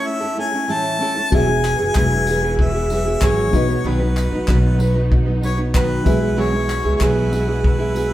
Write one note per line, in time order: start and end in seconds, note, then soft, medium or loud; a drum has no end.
0.00 0.22 A3 soft
0.00 1.29 A3 medium
0.00 0.21 C#4 medium
0.00 1.29 C#4 medium
0.00 0.21 E4 medium
0.00 1.29 E4 medium
0.00 0.19 A4 medium
0.07 0.38 E5 loud
0.21 0.35 A3 soft
0.21 0.37 C#4 soft
0.21 0.38 E4 medium
0.21 0.37 A4 medium
0.37 0.53 A3 medium
0.37 0.53 C#4 medium
0.37 0.52 E4 medium
0.37 0.51 A4 medium
0.37 0.73 G#5 loud
0.52 0.68 A3 soft
0.52 0.68 C#4 soft
0.52 0.68 E4 medium
0.52 0.69 A4 medium
0.68 1.00 A2 medium
0.68 1.00 E3 medium
0.68 0.98 A3 medium
0.68 0.99 C#4 medium
0.68 1.00 E4 medium
0.68 1.01 A4 medium
0.68 1.36 A5 loud
1.00 1.16 A3 medium
1.00 1.16 C#4 medium
1.00 1.16 E4 medium
1.00 1.15 A4 medium
1.16 1.32 A3 soft
1.16 1.32 C#4 soft
1.16 1.32 E4 soft
1.16 1.32 A4 soft
1.30 1.76 E1 loud
1.30 3.51 E3 medium
1.30 1.48 E3 medium
1.30 1.48 F#3 medium
1.30 3.48 B3 medium
1.30 1.48 B3 medium
1.30 3.50 E4 medium
1.30 1.47 E4 medium
1.30 6.01 F#4 medium
1.30 3.49 F#4 medium
1.30 3.51 G#4 medium
1.30 3.50 G#4 medium
1.30 1.46 G#4 medium
1.30 3.51 B4 medium
1.30 3.50 E5 medium
1.30 kick loud
1.35 1.97 G#5 loud
1.47 1.80 B3 soft
1.47 1.79 E4 medium
1.47 1.77 G#4 medium
1.64 clap medium
1.64 tambourine medium
1.79 1.94 F#1 medium
1.79 1.94 B3 soft
1.79 1.95 E4 medium
1.79 1.95 G#4 medium
1.94 3.18 E1 loud
1.94 2.26 E3 medium
1.94 2.25 F#3 medium
1.94 2.26 B3 medium
1.94 2.27 E4 medium
1.94 2.27 G#4 medium
1.94 2.56 G#5 loud
1.94 kick medium
1.94 clap loud
2.26 2.42 F#3 medium
2.26 2.43 B3 medium
2.26 2.42 E4 medium
2.26 2.41 G#4 medium
2.26 tambourine medium
2.42 2.75 B3 soft
2.42 2.74 E4 soft
2.42 2.73 G#4 medium
2.59 3.26 E5 loud
2.59 kick loud
2.74 2.90 B3 soft
2.74 2.91 E4 medium
2.74 2.90 G#4 medium
2.90 3.06 F#3 medium
2.90 3.06 B3 medium
2.90 3.06 E4 medium
2.90 3.04 G#4 medium
2.90 tambourine medium
3.05 3.21 B3 soft
3.05 3.22 E4 medium
3.05 3.21 G#4 medium
3.21 3.51 G#1 medium
3.21 3.53 E3 medium
3.21 3.51 F#3 medium
3.21 3.53 B3 medium
3.21 3.54 E4 medium
3.21 3.54 G#4 medium
3.21 3.89 C#5 loud
3.21 kick loud
3.21 clap loud
3.51 3.82 B1 medium
3.51 3.69 F#3 medium
3.51 6.01 B3 medium
3.51 6.03 B3 medium
3.51 3.69 B3 medium
3.51 6.01 D#4 medium
3.51 6.03 D#4 medium
3.51 6.02 F#4 medium
3.51 kick medium
3.51 tambourine medium
3.55 3.69 D#4 medium
3.55 3.68 B4 medium
3.55 6.03 D#5 medium
3.69 3.84 F#3 soft
3.69 3.85 B3 soft
3.69 3.85 D#4 soft
3.69 3.85 B4 soft
3.84 4.28 B1 loud
3.84 4.00 B2 medium
3.84 4.01 D#3 medium
3.84 4.01 F#3 medium
3.84 4.00 B3 medium
3.84 4.00 D#4 medium
3.84 3.98 B4 medium
3.84 5.12 B4 medium
4.00 4.33 F#3 soft
4.00 4.32 B3 medium
4.00 4.31 D#4 medium
4.00 4.30 B4 medium
4.16 clap medium
4.16 tambourine medium
4.31 4.46 A1 medium
4.31 4.47 F#3 soft
4.31 4.47 B3 medium
4.31 4.48 D#4 medium
4.31 4.48 B4 medium
4.47 6.02 B1 loud
4.47 4.79 B2 medium
4.47 4.80 D#3 medium
4.47 4.77 F#3 medium
4.47 4.78 B3 medium
4.47 4.79 D#4 medium
4.47 4.80 B4 medium
4.47 kick loud
4.47 clap loud
4.78 4.95 F#3 medium
4.78 4.95 B3 medium
4.78 4.94 D#4 medium
4.78 4.93 B4 medium
4.78 tambourine medium
4.94 5.27 F#3 medium
4.94 5.26 B3 medium
4.94 5.25 D#4 medium
4.94 5.24 B4 medium
5.12 kick loud
5.25 5.40 F#3 soft
5.25 5.41 B3 soft
5.25 5.42 D#4 medium
5.25 5.42 B4 medium
5.41 5.58 F#3 medium
5.41 5.57 B3 medium
5.41 5.57 D#4 medium
5.41 5.55 B4 medium
5.41 tambourine medium
5.45 5.59 C#5 medium
5.57 5.73 F#3 soft
5.57 5.73 B3 soft
5.57 5.73 D#4 medium
5.57 5.73 B4 medium
5.73 6.05 B2 medium
5.73 6.06 D#3 medium
5.73 6.03 F#3 medium
5.73 6.04 B3 medium
5.73 6.06 D#4 medium
5.73 6.06 B4 medium
5.73 6.41 B4 loud
5.73 kick loud
5.73 clap loud
6.03 6.81 B1 medium
6.03 6.21 F#3 medium
6.03 8.13 G#3 medium
6.03 6.21 B3 medium
6.03 8.13 E4 medium
6.03 6.20 E4 medium
6.03 8.13 F#4 medium
6.03 6.19 G#4 medium
6.03 8.13 B4 medium
6.03 kick loud
6.03 tambourine medium
6.08 8.13 G#3 medium
6.08 8.13 E4 medium
6.20 6.36 F#3 soft
6.20 6.36 B3 soft
6.20 6.36 E4 soft
6.20 6.37 G#4 medium
6.36 6.52 B2 medium
6.36 6.53 E3 medium
6.36 6.53 F#3 medium
6.36 6.53 B3 medium
6.36 6.52 E4 loud
6.36 6.51 G#4 medium
6.40 6.95 C#5 medium
6.52 6.86 F#3 soft
6.52 6.85 B3 medium
6.52 6.84 E4 soft
6.52 6.83 G#4 medium
6.69 clap medium
6.69 tambourine medium
6.84 6.99 C#2 medium
6.84 7.00 F#3 soft
6.84 7.00 B3 soft
6.84 7.00 E4 medium
6.84 7.00 G#4 medium
6.95 7.04 C#5 medium
7.00 8.13 B1 medium
7.00 7.32 B2 medium
7.00 7.32 E3 medium
7.00 7.30 F#3 medium
7.00 7.31 B3 medium
7.00 7.32 E4 medium
7.00 7.33 G#4 medium
7.00 7.65 B4 medium
7.00 kick medium
7.00 clap loud
7.31 7.47 F#3 medium
7.31 7.48 B3 medium
7.31 7.47 E4 medium
7.31 7.46 G#4 medium
7.31 tambourine medium
7.47 7.80 F#3 soft
7.47 7.79 B3 soft
7.47 7.78 E4 medium
7.47 7.77 G#4 medium
7.64 8.13 B4 loud
7.64 kick loud
7.78 7.93 F#3 soft
7.78 7.95 B3 soft
7.78 7.95 E4 medium
7.78 7.95 G#4 medium
7.94 8.11 F#3 medium
7.94 8.11 B3 medium
7.94 8.11 E4 medium
7.94 8.10 G#4 medium
7.94 tambourine medium